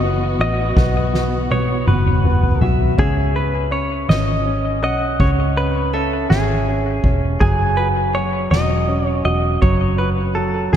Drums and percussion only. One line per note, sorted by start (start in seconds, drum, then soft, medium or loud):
0.03 ride soft
0.40 ride soft
0.77 kick loud
0.77 snare medium
1.14 snare medium
1.51 high tom medium
1.87 mid tom medium
2.06 mid tom medium
2.25 mid tom medium
2.43 floor tom medium
2.62 floor tom loud
2.81 floor tom medium
2.99 kick loud
3.36 ride soft
3.73 ride soft
4.09 snare loud
4.09 ride medium
4.46 ride soft
4.83 ride soft
5.20 kick loud
5.20 ride medium
5.57 ride soft
5.94 ride soft
6.31 snare loud
6.67 ride soft
7.04 kick loud
7.04 ride soft
7.41 kick loud
7.41 ride medium
7.77 ride soft
8.15 ride soft
8.52 snare medium
8.52 ride medium
8.88 ride soft
9.26 ride soft
9.62 kick loud
9.62 ride medium
9.99 ride soft
10.36 ride soft
10.73 snare loud
10.73 ride medium